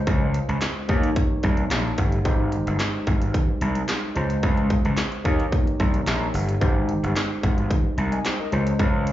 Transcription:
Already playing: G#3 C#4 F4 C5
0.07 C#2, kick, closed hi-hat
0.34 closed hi-hat
0.49 C#2, closed hi-hat
0.61 snare, clap, closed hi-hat
0.88 D#2 A#3 D#4 G4 C#5, kick, closed hi-hat
1.03 closed hi-hat
1.16 kick, closed hi-hat
1.43 C2, kick, closed hi-hat
1.57 closed hi-hat
1.70 A#1, snare, clap, closed hi-hat
1.98 G1, kick, closed hi-hat
2.12 closed hi-hat
2.24 G#1 G#3 D#4 G4 C5, kick, closed hi-hat
2.52 closed hi-hat
2.67 G1, closed hi-hat
2.79 snare, clap, closed hi-hat
3.07 G#1, kick, closed hi-hat
3.22 closed hi-hat
3.34 kick, closed hi-hat
3.61 C2, closed hi-hat
3.75 closed hi-hat
3.88 snare, clap, closed hi-hat
4.15 C#2 G#3 C#4 F4 C5, closed hi-hat
4.30 closed hi-hat
4.43 C#2, kick, closed hi-hat
4.57 closed hi-hat
4.70 kick, closed hi-hat
4.85 C#2, closed hi-hat
4.97 snare, clap, closed hi-hat
5.12 closed hi-hat
5.24 D#2 A#3 D#4 G4 C#5, kick, closed hi-hat
5.40 closed hi-hat
5.52 kick, closed hi-hat
5.67 closed hi-hat
5.80 C2, kick, closed hi-hat
5.94 closed hi-hat
6.07 A#1, snare, clap, closed hi-hat
6.34 G1, open hi-hat
6.49 closed hi-hat
6.60 G#1 G#3 D#4 G4 C5, kick, closed hi-hat
6.89 closed hi-hat
7.03 G1, closed hi-hat
7.16 snare, clap, closed hi-hat
7.43 G#1, kick, closed hi-hat
7.58 closed hi-hat
7.71 kick, closed hi-hat
7.98 C2, closed hi-hat
8.12 D#5 G#5, closed hi-hat
8.25 C5 G5, snare, clap, closed hi-hat
8.40 A#4 D#5
8.51 C#2 G#3 C#4 F4 C5, closed hi-hat
8.67 closed hi-hat
8.79 C#2, kick, closed hi-hat
9.07 closed hi-hat

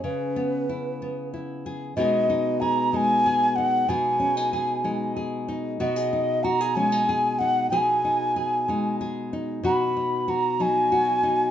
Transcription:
Already playing: C#4 G#4
0.04 C#3 B4
0.36 B3
0.69 E4
1.02 B3
1.34 E4
1.66 G#4
1.96 B2 G#3 B3 D#4 G#4 D#5
2.30 D#4
2.60 G#4 A#5
2.92 G#3 D#4 A#5
2.96 G#5
3.26 G#4
3.55 D#4 F#5
3.88 B2 G#4 G#5
4.20 C#4
4.37 D#4
4.53 G#4
4.84 G#3 D#4
5.17 G#4
5.48 D#4
5.80 B2 F#4 D#5
5.96 G#4
6.13 D#4
6.43 F#4 A#5
6.61 G#4
6.75 G#3 C#4 G#5
6.92 D#4
7.09 G#4
7.38 D#4 F#5
7.70 B2 G#4 G#5
8.05 D#4
8.36 G#4
8.68 G#3 D#4
9.01 G#4
9.33 D#4
9.63 B2 F#4 B5
9.97 D#4
10.28 F#4 A#5
10.60 F#3 D#4 G#5
10.92 F#4
11.23 D#4

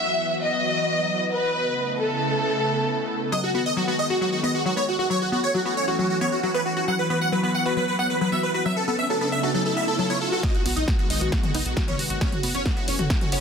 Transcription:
Already playing: E3 F#3 B3 F#4 E5
0.43 D#5
1.32 B4
1.55 C#3 A3 E4
1.99 A4
3.32 D#3 F#3 G#3 F#4 D#5
3.44 F#4
3.55 B3 F#4
3.66 D#5
3.77 F#3 F#4
3.88 B3 F#4
3.99 D#5
4.10 F#4
4.21 F#3 F#4
4.32 F#4
4.43 B3 D#5
4.55 F#4
4.66 F#3 F#4
4.77 B3 C#5
4.88 F#4
4.99 F#4
5.10 E3 F#3 A3 C#4 C#5
5.22 F#4
5.32 B3 F#4
5.44 C#5
5.54 F#3 F#4
5.66 B3 F#4
5.77 C#5
5.88 F#4
5.99 F#3 F#4
6.10 F#4
6.21 B3 C#5
6.32 F#4
6.43 F#3 F#4
6.54 B3 B4
6.65 F#4
6.77 F#4
6.88 F#3 B3 F#5, riser
6.99 B4
7.10 B3 B4
7.21 F#5
7.32 F#3 B4
7.43 B3 B4
7.55 F#5
7.66 F#4 B4
7.77 F#3 B4
7.88 B4
7.99 B3 F#5
8.10 B4
8.21 F#3 B4
8.32 B3 E5
8.43 B4
8.54 F#4 B4
8.65 C#3 F#3 A3 E4 E5
8.76 A4
8.88 B3 A4
8.99 E5
9.10 F#3 A4
9.21 B3 A4
9.32 E5
9.43 F#4 A4
9.54 F#3 A4
9.66 A4
9.77 B3 E5
9.88 A4
9.99 F#3 A4
10.10 B3 C#5
10.21 A4
10.32 F#4 A4
10.43 D#3 F#3 G#3 B3 D#4 F#4 D#5, kick, snare, closed hi-hat
10.54 F#4, closed hi-hat
10.65 B1 B3 F#4, open hi-hat
10.76 B1 D#4 D#5, closed hi-hat
10.88 F#3, kick, snare, closed hi-hat
10.99 B3 F#4, closed hi-hat
11.10 B1 D#4 D#5, open hi-hat
11.21 B1 F#4, closed hi-hat
11.32 F#3 F#4, kick, snare, closed hi-hat
11.43 F#4, closed hi-hat, mid tom
11.54 B1 B3 D#4 D#5, open hi-hat
11.65 B1 F#4, closed hi-hat
11.77 F#3 F#4, kick, snare, closed hi-hat
11.88 B1 B3 C#4 C#5, closed hi-hat, mid tom
11.99 F#4, open hi-hat
12.10 G#1 F#4, closed hi-hat
12.21 E3 F#3 A3 C#4 C#5, kick, snare, closed hi-hat
12.32 F#4, closed hi-hat, mid tom
12.43 F#1 B3 F#4, open hi-hat
12.54 F#1 C#4 C#5, closed hi-hat
12.66 F#3 F#4, kick, snare, closed hi-hat
12.77 B3 F#4, closed hi-hat
12.88 F#1 C#4 C#5, open hi-hat
12.99 F#1 F#4, closed hi-hat, mid tom
13.10 F#3 F#4, kick, snare, closed hi-hat
13.21 F#4, closed hi-hat, mid tom
13.32 F#1 B3 C#4 C#5, open hi-hat

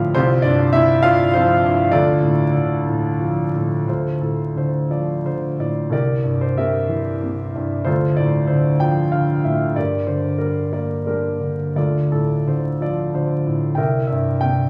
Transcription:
Already playing: D2 A2 D3 F3 F4 G4 A4 C5 F5 G5 A5
0.14 C2 C4 F4 G4 C5
0.42 G2 D4 D5
0.73 C3 E4 E5
1.03 G2 F4 F5
1.33 F3 C4 F4 C5
1.64 G2
1.91 D2 D4 F4 A4 D5
2.22 A2
2.53 D3
2.87 A2
3.20 F3
3.54 A2
3.87 D2 F4 A4 C5
4.20 A2 A4
4.55 D3 C5
4.90 F3 D5
5.25 D3 C5
5.58 A2 D5
5.90 C2 G4 A#4 D5
6.24 G2
6.41 C5
6.57 C3 G4 A#4 E5
6.89 E3
7.23 C3
7.55 G2
7.85 D2 F4 A4 C5
8.17 A2 D5
8.47 D3 C5
8.80 F3 G5
9.12 D3 F5
9.44 A2 E5
9.75 G2 G4 A#4 D5
10.07 D3 C5
10.38 G3 A#4
10.72 A#3 D5
11.06 G3 D4 G4 A#4
11.40 D3
11.76 D2 F4 A4 D5
12.12 A2 A4
12.47 D3 C5
12.80 F3 D5
13.14 D3 C5
13.46 A2
13.75 C2 A#4 E5 G5
14.07 G2 E5
14.41 C3 G5

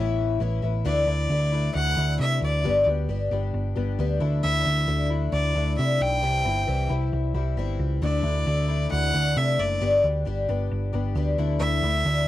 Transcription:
Already playing: A1 A2 E3 B3 C#4 E4
0.40 A1 E3 B3 C#4 E4
0.62 A1 B3 C#4 E4
0.85 D2 D3 E3 A3 D4 E4 D5
1.07 D2 A3 D4 E4
1.30 D2 E3 A3 D4 E4
1.52 A3 D4 E4
1.74 D2 F#5
1.97 D2 A3 D4 E4
2.19 C3 E3 A3 D4 E4 E5
2.41 D2 D5
2.64 G1 G2 D3 G3 B3 D4 G4
2.86 D2 G3 B3 D4 G4
3.09 G1 G3 B3 D4 G4
3.31 G1 G3 B3 D4 G4
3.54 G1
3.76 G1 G3 B3 D4 G4
3.99 D2 G3 B3 D4 G4
4.20 D2 D3 A3 D4 E4
4.43 D2 E5
4.65 D2 A3 D4 E4
4.87 D2 D3 A3 D4 E4
5.10 A3 D4 E4
5.32 D2 D5
5.55 D2 A3 D4 E4
5.77 C3 D3 A3 D4 E4 E5
6.00 B1 G5
6.22 C2 C3 E3 G3 C4 E4
6.45 G1 G3 C4 E4
6.67 C2 E3 G3 C4 E4
6.90 C2 G3 C4 E4
7.13 C2
7.34 C2 G3 C4 E4
7.57 G1 E3 G3 C4 E4
7.79 C#2
8.02 D2 D3 A3 D4 E4 D5
8.23 D2 A3 D4 E4
8.46 D2 D3 A3 D4 E4
8.68 A3 D4 E4
8.91 D2 F#5
9.13 D2 A3 D4 E4
9.36 C3 D3 A3 D4 E4 E5
9.59 F#1 D5
9.81 G1 G2 D3 G3 B3 D4 G4
10.03 D2 G3 B3 D4 G4
10.25 G1 G3 B3 D4 G4
10.49 G1 G3 B3 D4 G4
10.71 G1
10.93 G1 G3 B3 D4 G4
11.15 D2 G3 B3 D4 G4
11.38 D2 D3 A3 D4 E4
11.59 D2 E5
11.83 D2 A3 D4 E4
12.05 D2 D3 A3 D4 E4

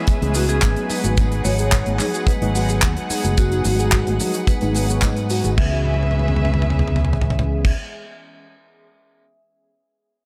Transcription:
Already playing: E3 G#3 B3 C#4 G#4 B4 E5 G#5
0.07 B3, kick, closed hi-hat, tambourine, shaker
0.21 C#2 E3 G#3 B3 C#4 G#4, closed hi-hat, high conga
0.34 E4 F#4, open hi-hat, tambourine, shaker
0.48 G#4, closed hi-hat, tambourine, shaker
0.62 G#1 B4, kick, clap, closed hi-hat, tambourine, high conga, shaker
0.76 F#3 G#3 B3 D#4 G#4, closed hi-hat
0.90 G#3 D#4 B4 F#5, muted fingered electric bass stroke, open hi-hat, tambourine, shaker
1.04 G#1 F#4, closed hi-hat, tambourine, high conga, shaker
1.17 F#3 G#3 B3 D#4 G#4, kick, closed hi-hat, tambourine, shaker
1.32 D#4, closed hi-hat
1.45 G#1 F#4 C#5, open hi-hat, tambourine, high conga, low conga, shaker
1.58 F#3 G#3 B3 D#4 G#4, closed hi-hat, tambourine, shaker
1.72 B4, kick, clap, closed hi-hat, tambourine, shaker
1.86 G#1 B3, closed hi-hat, high conga
1.99 F#3 G#3 B3 D#4 G#4, clap, open hi-hat, tambourine, low conga, shaker
2.14 F#4, closed hi-hat, tambourine, shaker
2.27 B3 B4, muted fingered electric bass stroke, kick, closed hi-hat, tambourine, shaker
2.41 G#1 F#3 G#3 B3 D#4 G#4, closed hi-hat, high conga
2.55 F#4, open hi-hat, tambourine, shaker
2.69 G#4, closed hi-hat, tambourine, shaker
2.82 D#2 B4, kick, clap, closed hi-hat, tambourine, high conga, shaker
2.96 F#3 G#3 B3 D#4 G#4, closed hi-hat
3.10 D#4 G#4, muted fingered electric bass stroke, open hi-hat, tambourine, shaker
3.24 F#1 F#4, closed hi-hat, tambourine, high conga, shaker
3.37 F#3 G#3 B3 D#4 F#4 G#4, kick, closed hi-hat, tambourine, shaker
3.52 D#4, closed hi-hat, tambourine
3.64 G#1 F#4, open hi-hat, tambourine, high conga, low conga, shaker
3.79 F#3 G#3 B3 D#4 G#4, closed hi-hat, tambourine, shaker
3.91 kick, clap, closed hi-hat, tambourine, shaker
4.07 G#1 B3, closed hi-hat, high conga
4.19 F#3 G#3 B3 D#4 G#4, open hi-hat, tambourine, low conga, shaker
4.34 F#4, closed hi-hat, tambourine, shaker
4.47 B3 B4, kick, closed hi-hat, tambourine, shaker
4.61 G#1 F#3 G#3 B3 D#4 G#4, closed hi-hat, tambourine, high conga
4.75 G#4, open hi-hat, tambourine, shaker
4.88 F#3 G#3 B3 D#4 G#4 C#5, closed hi-hat, tambourine, shaker
5.02 G#2 D#5, kick, clap, closed hi-hat, tambourine, high conga, shaker
5.17 F#3 G#3 B3 D#4 G#4, closed hi-hat, tambourine
5.30 F#3 G#3 B3 D#4 F#4, open hi-hat, tambourine, shaker
5.44 G#1 G#4, closed hi-hat, tambourine, high conga, shaker
5.56 C#2 E3 G#3 B3 C#4 G#4 B4 E5, kick, crash
5.85 high tom
5.94 high tom
6.03 high tom
6.11 high tom
6.19 high tom
6.28 mid tom
6.36 mid tom
6.45 mid tom
6.54 mid tom
6.62 mid tom
6.70 mid tom
6.79 mid tom
6.88 mid tom
6.96 mid tom
7.05 mid tom
7.13 floor tom
7.21 floor tom
7.30 floor tom
7.39 floor tom
7.65 kick, crash

